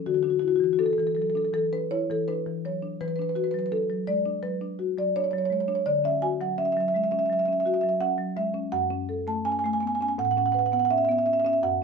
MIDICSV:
0, 0, Header, 1, 2, 480
1, 0, Start_track
1, 0, Tempo, 736196
1, 44, Time_signature, 4, 2, 24, 8
1, 1964, Tempo, 715137
1, 5324, Tempo, 723764
1, 7856, End_track
2, 0, Start_track
2, 0, Title_t, "Marimba"
2, 0, Program_c, 0, 12
2, 41, Note_on_c, 0, 66, 94
2, 42, Note_on_c, 0, 50, 78
2, 94, Note_off_c, 0, 66, 0
2, 94, Note_on_c, 0, 66, 77
2, 148, Note_off_c, 0, 66, 0
2, 148, Note_on_c, 0, 66, 79
2, 157, Note_on_c, 0, 62, 62
2, 196, Note_off_c, 0, 66, 0
2, 196, Note_on_c, 0, 66, 73
2, 257, Note_off_c, 0, 66, 0
2, 257, Note_on_c, 0, 66, 84
2, 273, Note_on_c, 0, 64, 65
2, 312, Note_off_c, 0, 66, 0
2, 312, Note_on_c, 0, 66, 77
2, 350, Note_off_c, 0, 62, 0
2, 363, Note_off_c, 0, 66, 0
2, 363, Note_on_c, 0, 66, 80
2, 393, Note_on_c, 0, 52, 61
2, 418, Note_off_c, 0, 66, 0
2, 418, Note_on_c, 0, 66, 79
2, 468, Note_off_c, 0, 64, 0
2, 476, Note_off_c, 0, 66, 0
2, 476, Note_on_c, 0, 66, 81
2, 500, Note_off_c, 0, 66, 0
2, 514, Note_on_c, 0, 69, 92
2, 515, Note_on_c, 0, 62, 69
2, 560, Note_off_c, 0, 69, 0
2, 560, Note_on_c, 0, 69, 73
2, 588, Note_off_c, 0, 52, 0
2, 606, Note_off_c, 0, 69, 0
2, 606, Note_on_c, 0, 69, 78
2, 639, Note_on_c, 0, 52, 67
2, 649, Note_off_c, 0, 69, 0
2, 649, Note_on_c, 0, 69, 77
2, 696, Note_off_c, 0, 69, 0
2, 696, Note_on_c, 0, 69, 78
2, 711, Note_off_c, 0, 62, 0
2, 749, Note_off_c, 0, 69, 0
2, 749, Note_on_c, 0, 69, 70
2, 760, Note_on_c, 0, 54, 61
2, 794, Note_off_c, 0, 69, 0
2, 794, Note_on_c, 0, 69, 75
2, 834, Note_off_c, 0, 52, 0
2, 846, Note_off_c, 0, 69, 0
2, 846, Note_on_c, 0, 69, 74
2, 882, Note_on_c, 0, 62, 70
2, 883, Note_off_c, 0, 54, 0
2, 893, Note_off_c, 0, 69, 0
2, 893, Note_on_c, 0, 69, 78
2, 943, Note_off_c, 0, 69, 0
2, 943, Note_on_c, 0, 69, 70
2, 979, Note_off_c, 0, 50, 0
2, 983, Note_off_c, 0, 69, 0
2, 1000, Note_on_c, 0, 52, 65
2, 1003, Note_on_c, 0, 69, 103
2, 1078, Note_off_c, 0, 62, 0
2, 1125, Note_on_c, 0, 62, 61
2, 1126, Note_off_c, 0, 69, 0
2, 1127, Note_on_c, 0, 71, 93
2, 1197, Note_off_c, 0, 52, 0
2, 1245, Note_on_c, 0, 73, 108
2, 1246, Note_on_c, 0, 64, 71
2, 1247, Note_off_c, 0, 71, 0
2, 1319, Note_off_c, 0, 62, 0
2, 1367, Note_off_c, 0, 73, 0
2, 1370, Note_on_c, 0, 52, 69
2, 1376, Note_on_c, 0, 69, 86
2, 1439, Note_off_c, 0, 64, 0
2, 1485, Note_on_c, 0, 71, 103
2, 1488, Note_on_c, 0, 62, 70
2, 1492, Note_off_c, 0, 69, 0
2, 1561, Note_off_c, 0, 52, 0
2, 1608, Note_on_c, 0, 52, 64
2, 1680, Note_off_c, 0, 62, 0
2, 1717, Note_off_c, 0, 71, 0
2, 1728, Note_on_c, 0, 54, 56
2, 1731, Note_on_c, 0, 73, 83
2, 1799, Note_off_c, 0, 52, 0
2, 1841, Note_on_c, 0, 62, 71
2, 1847, Note_off_c, 0, 54, 0
2, 1957, Note_off_c, 0, 73, 0
2, 1961, Note_on_c, 0, 71, 97
2, 1962, Note_off_c, 0, 62, 0
2, 1963, Note_on_c, 0, 52, 79
2, 2008, Note_off_c, 0, 71, 0
2, 2008, Note_on_c, 0, 71, 82
2, 2061, Note_off_c, 0, 71, 0
2, 2061, Note_on_c, 0, 71, 81
2, 2084, Note_on_c, 0, 62, 66
2, 2102, Note_off_c, 0, 71, 0
2, 2102, Note_on_c, 0, 71, 79
2, 2153, Note_off_c, 0, 71, 0
2, 2153, Note_on_c, 0, 71, 86
2, 2194, Note_on_c, 0, 66, 69
2, 2198, Note_off_c, 0, 71, 0
2, 2198, Note_on_c, 0, 71, 82
2, 2250, Note_off_c, 0, 71, 0
2, 2250, Note_on_c, 0, 71, 79
2, 2276, Note_off_c, 0, 62, 0
2, 2300, Note_off_c, 0, 71, 0
2, 2300, Note_on_c, 0, 71, 81
2, 2318, Note_on_c, 0, 54, 67
2, 2350, Note_off_c, 0, 71, 0
2, 2350, Note_on_c, 0, 71, 87
2, 2391, Note_off_c, 0, 66, 0
2, 2399, Note_off_c, 0, 71, 0
2, 2399, Note_on_c, 0, 71, 79
2, 2423, Note_off_c, 0, 71, 0
2, 2438, Note_on_c, 0, 62, 64
2, 2439, Note_on_c, 0, 69, 96
2, 2513, Note_off_c, 0, 54, 0
2, 2557, Note_on_c, 0, 54, 73
2, 2633, Note_off_c, 0, 62, 0
2, 2672, Note_off_c, 0, 69, 0
2, 2676, Note_on_c, 0, 74, 95
2, 2677, Note_on_c, 0, 56, 62
2, 2753, Note_off_c, 0, 54, 0
2, 2799, Note_on_c, 0, 62, 69
2, 2801, Note_off_c, 0, 56, 0
2, 2897, Note_off_c, 0, 52, 0
2, 2911, Note_off_c, 0, 74, 0
2, 2914, Note_on_c, 0, 54, 65
2, 2914, Note_on_c, 0, 71, 98
2, 2994, Note_off_c, 0, 62, 0
2, 3039, Note_on_c, 0, 62, 67
2, 3112, Note_off_c, 0, 54, 0
2, 3157, Note_on_c, 0, 66, 70
2, 3235, Note_off_c, 0, 62, 0
2, 3266, Note_off_c, 0, 71, 0
2, 3282, Note_on_c, 0, 54, 65
2, 3288, Note_on_c, 0, 74, 92
2, 3354, Note_off_c, 0, 66, 0
2, 3405, Note_on_c, 0, 73, 103
2, 3406, Note_on_c, 0, 62, 69
2, 3407, Note_off_c, 0, 74, 0
2, 3460, Note_off_c, 0, 73, 0
2, 3460, Note_on_c, 0, 73, 81
2, 3476, Note_off_c, 0, 54, 0
2, 3506, Note_off_c, 0, 73, 0
2, 3506, Note_on_c, 0, 73, 88
2, 3522, Note_on_c, 0, 54, 74
2, 3555, Note_off_c, 0, 73, 0
2, 3555, Note_on_c, 0, 73, 85
2, 3598, Note_off_c, 0, 62, 0
2, 3603, Note_off_c, 0, 73, 0
2, 3603, Note_on_c, 0, 73, 93
2, 3634, Note_on_c, 0, 56, 64
2, 3651, Note_off_c, 0, 73, 0
2, 3651, Note_on_c, 0, 73, 81
2, 3704, Note_off_c, 0, 73, 0
2, 3704, Note_on_c, 0, 73, 89
2, 3716, Note_off_c, 0, 54, 0
2, 3754, Note_on_c, 0, 62, 72
2, 3756, Note_off_c, 0, 73, 0
2, 3756, Note_on_c, 0, 73, 81
2, 3760, Note_off_c, 0, 56, 0
2, 3803, Note_off_c, 0, 73, 0
2, 3803, Note_on_c, 0, 73, 90
2, 3867, Note_off_c, 0, 73, 0
2, 3874, Note_on_c, 0, 74, 114
2, 3877, Note_on_c, 0, 50, 81
2, 3881, Note_off_c, 0, 62, 0
2, 3998, Note_on_c, 0, 61, 71
2, 4001, Note_off_c, 0, 74, 0
2, 4004, Note_on_c, 0, 76, 108
2, 4117, Note_on_c, 0, 66, 68
2, 4118, Note_on_c, 0, 80, 106
2, 4126, Note_off_c, 0, 76, 0
2, 4195, Note_off_c, 0, 61, 0
2, 4242, Note_on_c, 0, 54, 65
2, 4243, Note_off_c, 0, 80, 0
2, 4245, Note_on_c, 0, 78, 100
2, 4315, Note_off_c, 0, 66, 0
2, 4359, Note_on_c, 0, 76, 105
2, 4361, Note_on_c, 0, 61, 70
2, 4368, Note_off_c, 0, 78, 0
2, 4407, Note_off_c, 0, 76, 0
2, 4407, Note_on_c, 0, 76, 86
2, 4438, Note_off_c, 0, 54, 0
2, 4455, Note_off_c, 0, 76, 0
2, 4455, Note_on_c, 0, 76, 86
2, 4486, Note_on_c, 0, 54, 70
2, 4509, Note_off_c, 0, 76, 0
2, 4509, Note_on_c, 0, 76, 86
2, 4557, Note_off_c, 0, 61, 0
2, 4562, Note_off_c, 0, 76, 0
2, 4562, Note_on_c, 0, 76, 95
2, 4603, Note_on_c, 0, 56, 62
2, 4614, Note_off_c, 0, 76, 0
2, 4614, Note_on_c, 0, 76, 83
2, 4665, Note_off_c, 0, 76, 0
2, 4665, Note_on_c, 0, 76, 86
2, 4679, Note_off_c, 0, 54, 0
2, 4716, Note_off_c, 0, 76, 0
2, 4716, Note_on_c, 0, 76, 80
2, 4722, Note_on_c, 0, 61, 68
2, 4725, Note_off_c, 0, 56, 0
2, 4767, Note_off_c, 0, 76, 0
2, 4767, Note_on_c, 0, 76, 96
2, 4813, Note_off_c, 0, 76, 0
2, 4813, Note_on_c, 0, 76, 84
2, 4816, Note_off_c, 0, 50, 0
2, 4842, Note_on_c, 0, 54, 70
2, 4860, Note_off_c, 0, 76, 0
2, 4860, Note_on_c, 0, 76, 94
2, 4904, Note_off_c, 0, 76, 0
2, 4904, Note_on_c, 0, 76, 89
2, 4915, Note_off_c, 0, 61, 0
2, 4946, Note_off_c, 0, 76, 0
2, 4946, Note_on_c, 0, 76, 88
2, 4965, Note_on_c, 0, 61, 64
2, 4993, Note_off_c, 0, 76, 0
2, 4993, Note_on_c, 0, 76, 79
2, 5035, Note_off_c, 0, 54, 0
2, 5044, Note_off_c, 0, 76, 0
2, 5044, Note_on_c, 0, 76, 95
2, 5081, Note_on_c, 0, 66, 73
2, 5090, Note_off_c, 0, 76, 0
2, 5090, Note_on_c, 0, 76, 81
2, 5137, Note_off_c, 0, 76, 0
2, 5137, Note_on_c, 0, 76, 88
2, 5156, Note_off_c, 0, 61, 0
2, 5185, Note_off_c, 0, 76, 0
2, 5185, Note_on_c, 0, 76, 86
2, 5202, Note_on_c, 0, 54, 69
2, 5237, Note_off_c, 0, 76, 0
2, 5237, Note_on_c, 0, 76, 94
2, 5274, Note_off_c, 0, 66, 0
2, 5293, Note_off_c, 0, 76, 0
2, 5316, Note_on_c, 0, 61, 72
2, 5316, Note_on_c, 0, 78, 117
2, 5394, Note_off_c, 0, 54, 0
2, 5433, Note_on_c, 0, 54, 73
2, 5510, Note_off_c, 0, 61, 0
2, 5548, Note_off_c, 0, 78, 0
2, 5554, Note_on_c, 0, 56, 65
2, 5556, Note_on_c, 0, 76, 107
2, 5629, Note_off_c, 0, 54, 0
2, 5672, Note_on_c, 0, 61, 75
2, 5678, Note_off_c, 0, 56, 0
2, 5789, Note_off_c, 0, 76, 0
2, 5790, Note_on_c, 0, 78, 121
2, 5791, Note_on_c, 0, 42, 85
2, 5797, Note_off_c, 0, 61, 0
2, 5912, Note_on_c, 0, 61, 72
2, 6035, Note_on_c, 0, 69, 73
2, 6109, Note_off_c, 0, 61, 0
2, 6142, Note_off_c, 0, 78, 0
2, 6154, Note_on_c, 0, 57, 67
2, 6158, Note_on_c, 0, 81, 104
2, 6231, Note_off_c, 0, 69, 0
2, 6274, Note_on_c, 0, 61, 69
2, 6274, Note_on_c, 0, 80, 117
2, 6281, Note_off_c, 0, 81, 0
2, 6319, Note_off_c, 0, 80, 0
2, 6319, Note_on_c, 0, 80, 91
2, 6351, Note_off_c, 0, 57, 0
2, 6366, Note_off_c, 0, 80, 0
2, 6366, Note_on_c, 0, 80, 99
2, 6402, Note_on_c, 0, 57, 72
2, 6411, Note_off_c, 0, 80, 0
2, 6411, Note_on_c, 0, 80, 92
2, 6461, Note_off_c, 0, 80, 0
2, 6461, Note_on_c, 0, 80, 103
2, 6471, Note_off_c, 0, 61, 0
2, 6508, Note_off_c, 0, 80, 0
2, 6508, Note_on_c, 0, 80, 92
2, 6524, Note_on_c, 0, 59, 62
2, 6554, Note_off_c, 0, 80, 0
2, 6554, Note_on_c, 0, 80, 98
2, 6595, Note_off_c, 0, 57, 0
2, 6605, Note_off_c, 0, 80, 0
2, 6605, Note_on_c, 0, 80, 91
2, 6643, Note_on_c, 0, 61, 71
2, 6645, Note_off_c, 0, 59, 0
2, 6653, Note_off_c, 0, 80, 0
2, 6653, Note_on_c, 0, 80, 100
2, 6694, Note_off_c, 0, 80, 0
2, 6694, Note_on_c, 0, 80, 92
2, 6732, Note_off_c, 0, 42, 0
2, 6741, Note_off_c, 0, 80, 0
2, 6760, Note_on_c, 0, 45, 90
2, 6764, Note_off_c, 0, 61, 0
2, 6764, Note_on_c, 0, 78, 114
2, 6803, Note_off_c, 0, 78, 0
2, 6803, Note_on_c, 0, 78, 86
2, 6844, Note_off_c, 0, 78, 0
2, 6844, Note_on_c, 0, 78, 98
2, 6885, Note_on_c, 0, 61, 73
2, 6891, Note_off_c, 0, 78, 0
2, 6891, Note_on_c, 0, 78, 92
2, 6941, Note_off_c, 0, 78, 0
2, 6941, Note_on_c, 0, 78, 98
2, 6983, Note_off_c, 0, 78, 0
2, 6983, Note_on_c, 0, 78, 92
2, 6999, Note_on_c, 0, 71, 75
2, 7028, Note_off_c, 0, 78, 0
2, 7028, Note_on_c, 0, 78, 96
2, 7075, Note_off_c, 0, 78, 0
2, 7075, Note_on_c, 0, 78, 91
2, 7077, Note_off_c, 0, 61, 0
2, 7116, Note_on_c, 0, 59, 73
2, 7123, Note_off_c, 0, 78, 0
2, 7123, Note_on_c, 0, 78, 102
2, 7166, Note_off_c, 0, 78, 0
2, 7166, Note_on_c, 0, 78, 94
2, 7193, Note_off_c, 0, 71, 0
2, 7202, Note_off_c, 0, 78, 0
2, 7202, Note_on_c, 0, 78, 104
2, 7225, Note_off_c, 0, 78, 0
2, 7238, Note_on_c, 0, 76, 118
2, 7240, Note_on_c, 0, 61, 75
2, 7287, Note_off_c, 0, 76, 0
2, 7287, Note_on_c, 0, 76, 96
2, 7312, Note_off_c, 0, 59, 0
2, 7333, Note_off_c, 0, 76, 0
2, 7333, Note_on_c, 0, 76, 99
2, 7361, Note_on_c, 0, 59, 74
2, 7377, Note_off_c, 0, 76, 0
2, 7377, Note_on_c, 0, 76, 93
2, 7424, Note_off_c, 0, 76, 0
2, 7424, Note_on_c, 0, 76, 97
2, 7434, Note_off_c, 0, 61, 0
2, 7473, Note_off_c, 0, 76, 0
2, 7473, Note_on_c, 0, 76, 93
2, 7479, Note_on_c, 0, 61, 64
2, 7522, Note_off_c, 0, 76, 0
2, 7522, Note_on_c, 0, 76, 98
2, 7555, Note_off_c, 0, 59, 0
2, 7565, Note_off_c, 0, 76, 0
2, 7565, Note_on_c, 0, 76, 98
2, 7590, Note_off_c, 0, 61, 0
2, 7598, Note_on_c, 0, 61, 74
2, 7608, Note_off_c, 0, 76, 0
2, 7608, Note_on_c, 0, 76, 106
2, 7654, Note_off_c, 0, 76, 0
2, 7654, Note_on_c, 0, 76, 93
2, 7696, Note_off_c, 0, 45, 0
2, 7702, Note_off_c, 0, 76, 0
2, 7718, Note_on_c, 0, 42, 86
2, 7721, Note_off_c, 0, 61, 0
2, 7721, Note_on_c, 0, 78, 117
2, 7842, Note_off_c, 0, 78, 0
2, 7856, Note_off_c, 0, 42, 0
2, 7856, End_track
0, 0, End_of_file